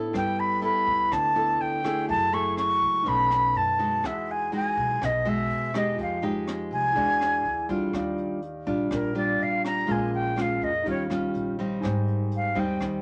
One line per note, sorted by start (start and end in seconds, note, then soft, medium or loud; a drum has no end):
0.00 0.11 A2 medium
0.00 0.58 B3 medium
0.00 0.15 D4 soft
0.00 0.59 E4 medium
0.00 0.59 A4 medium
0.00 0.15 C5 soft
0.00 0.11 F#5 medium
0.10 1.08 G3 medium
0.10 2.03 E4 soft
0.10 2.04 A4 soft
0.10 2.05 B4 soft
0.14 0.83 G1 medium
0.14 2.06 G5 medium
0.14 0.41 G5 medium
0.14 kick medium
0.14 cross-stick soft
0.14 closed hi-hat soft
0.39 0.63 B5 medium
0.39 closed hi-hat soft
0.61 1.31 B3 medium
0.61 1.31 E4 medium
0.61 1.31 A4 medium
0.61 1.14 B5 medium
0.61 closed hi-hat soft
0.87 1.10 D2 medium
0.87 kick medium
0.87 closed hi-hat soft
1.11 1.57 D2 loud
1.11 2.06 D3 medium
1.11 1.63 A5 loud
1.11 kick medium
1.11 cross-stick medium
1.11 closed hi-hat soft
1.35 1.80 B3 medium
1.35 1.80 E4 medium
1.35 1.81 A4 medium
1.35 closed hi-hat soft
1.58 2.10 D2 medium
1.58 2.09 G5 medium
1.58 closed hi-hat soft
1.84 2.29 A3 medium
1.84 2.29 E4 medium
1.84 2.29 G#4 medium
1.84 cross-stick medium
1.84 closed hi-hat soft
2.05 2.78 F#1 medium
2.05 3.04 F#3 medium
2.05 3.02 F#4 medium
2.05 3.04 E5 soft
2.09 3.05 G#5 medium
2.09 2.35 A5 medium
2.09 kick medium
2.09 closed hi-hat soft
2.32 3.02 A3 medium
2.32 3.02 E4 medium
2.32 3.02 G#4 medium
2.32 2.58 C#6 medium
2.32 closed hi-hat soft
2.57 3.10 C#6 loud
2.57 cross-stick medium
2.57 closed hi-hat soft
2.82 3.04 C#2 medium
2.82 kick medium
2.82 closed hi-hat soft
3.02 3.51 B1 loud
3.02 4.01 B2 soft
3.02 3.54 A3 medium
3.02 3.54 C#4 medium
3.02 4.00 D#4 medium
3.02 4.01 B4 soft
3.06 3.55 D#4 medium
3.06 4.02 C#5 soft
3.06 4.03 A5 medium
3.06 3.58 B5 loud
3.06 kick medium
3.06 closed hi-hat soft
3.31 cross-stick medium
3.31 closed hi-hat soft
3.54 4.04 F#2 medium
3.54 4.08 A5 medium
3.54 closed hi-hat soft
3.79 4.48 G#3 medium
3.79 4.49 D#4 medium
3.79 4.49 F#4 medium
3.79 closed hi-hat soft
4.03 4.73 E2 loud
4.03 4.98 E3 soft
4.03 5.94 G#4 soft
4.03 4.33 E5 medium
4.03 5.95 D#6 soft
4.03 kick medium
4.03 cross-stick medium
4.03 closed hi-hat soft
4.07 5.96 F#5 medium
4.28 4.54 G#5 medium
4.28 closed hi-hat soft
4.52 5.01 G#3 medium
4.52 5.01 D#4 soft
4.52 5.01 F#4 medium
4.52 5.06 G#5 medium
4.52 closed hi-hat soft
4.77 5.00 B1 medium
4.77 kick medium
4.77 closed hi-hat soft
5.01 5.47 B1 loud
5.01 5.96 B2 medium
5.01 5.30 D#5 medium
5.01 kick medium
5.01 cross-stick medium
5.01 closed hi-hat soft
5.25 5.70 G#3 medium
5.25 5.71 F#4 medium
5.25 5.79 E5 loud
5.25 closed hi-hat soft
5.50 5.99 E2 medium
5.50 closed hi-hat soft
5.74 6.19 G#3 medium
5.74 6.19 D#4 medium
5.74 6.20 G4 medium
5.74 6.00 D#5 medium
5.74 cross-stick medium
5.74 closed hi-hat soft
5.95 6.68 F2 medium
5.95 6.93 F3 soft
5.95 6.92 F4 soft
5.95 6.94 D#5 soft
5.95 kick medium
5.95 closed hi-hat soft
6.01 6.23 F5 medium
6.01 6.95 G5 medium
6.22 6.92 G#3 medium
6.22 6.92 D#4 medium
6.22 6.92 G4 medium
6.22 closed hi-hat soft
6.48 cross-stick medium
6.48 closed hi-hat soft
6.71 6.94 C2 medium
6.71 7.66 G#5 loud
6.71 closed hi-hat soft
6.92 7.41 E2 loud
6.92 7.91 E3 medium
6.92 7.44 G#3 medium
6.92 7.44 D4 soft
6.92 7.90 E4 soft
6.92 7.45 F#4 medium
6.92 7.91 G#4 soft
6.92 kick medium
6.92 closed hi-hat soft
6.96 7.92 D5 soft
6.96 7.93 F#5 medium
7.21 cross-stick medium
7.21 closed hi-hat soft
7.44 7.90 D2 medium
7.44 closed hi-hat soft
7.69 8.38 G3 medium
7.69 8.39 D4 medium
7.69 8.39 F4 medium
7.69 kick medium
7.69 closed hi-hat soft
7.92 8.63 D#2 medium
7.92 8.89 D#3 medium
7.92 9.12 G4 medium
7.92 9.13 D5 medium
7.92 9.14 F5 medium
7.92 kick medium
7.92 cross-stick medium
7.92 closed hi-hat soft
8.18 closed hi-hat soft
8.42 closed hi-hat soft
8.67 8.89 A#1 medium
8.67 9.11 G3 medium
8.67 9.11 D4 medium
8.67 9.12 F4 medium
8.67 kick medium
8.67 closed hi-hat soft
8.91 9.36 A#1 medium
8.91 9.86 A#2 medium
8.91 9.15 A#4 medium
8.91 kick medium
8.91 cross-stick medium
8.91 closed hi-hat soft
9.15 9.84 G3 medium
9.15 9.84 D4 medium
9.15 9.85 F4 medium
9.15 9.88 G4 soft
9.15 9.89 D5 soft
9.15 9.44 D5 medium
9.15 9.89 F5 soft
9.15 closed hi-hat soft
9.40 9.85 A#1 medium
9.40 9.65 F5 medium
9.40 closed hi-hat soft
9.65 9.93 A#5 medium
9.65 cross-stick medium
9.65 closed hi-hat soft
9.86 10.57 A#1 loud
9.86 10.83 A#2 soft
9.86 10.32 G#3 medium
9.86 10.82 C#4 medium
9.86 10.33 C#4 medium
9.86 10.33 F4 medium
9.86 10.83 G#4 soft
9.86 10.84 A#4 soft
9.86 kick medium
9.86 closed hi-hat soft
9.92 10.86 F5 medium
9.92 10.14 G#5 medium
10.14 10.43 G5 medium
10.14 closed hi-hat soft
10.36 10.69 G#3 medium
10.36 10.69 C#4 medium
10.36 10.70 F4 medium
10.36 cross-stick medium
10.36 closed hi-hat soft
10.41 10.65 F5 medium
10.62 10.86 F2 medium
10.62 10.87 D#5 medium
10.62 kick medium
10.62 closed hi-hat soft
10.83 11.31 D#2 medium
10.83 11.81 D#3 soft
10.83 11.06 G3 medium
10.83 11.06 C#4 medium
10.83 11.79 D#4 soft
10.83 11.07 F4 medium
10.83 11.81 G4 soft
10.83 kick medium
10.83 closed hi-hat soft
10.87 11.82 C#5 soft
10.87 11.03 C#5 medium
10.87 11.83 F5 medium
11.10 11.55 G3 medium
11.10 11.55 C#4 medium
11.10 11.55 F4 medium
11.10 cross-stick medium
11.10 closed hi-hat soft
11.34 11.79 A#1 medium
11.34 closed hi-hat soft
11.59 12.52 G3 medium
11.59 12.52 C4 medium
11.59 12.53 D#4 medium
11.59 closed hi-hat soft
11.80 12.52 G#1 loud
11.80 12.78 G#2 medium
11.80 13.02 D#4 medium
11.80 13.02 C5 medium
11.80 13.02 G#5 soft
11.80 kick medium
11.80 cross-stick medium
11.80 closed hi-hat soft
11.86 13.02 G5 medium
12.08 closed hi-hat soft
12.31 closed hi-hat soft
12.36 12.61 F5 medium
12.55 12.79 D#2 medium
12.55 13.00 G3 medium
12.55 13.01 C4 medium
12.55 13.01 D#4 medium
12.55 kick medium
12.55 closed hi-hat soft
12.59 12.82 G5 medium
12.80 13.02 D#2 medium
12.80 13.02 D#3 medium
12.80 kick medium
12.80 cross-stick medium
12.80 closed hi-hat soft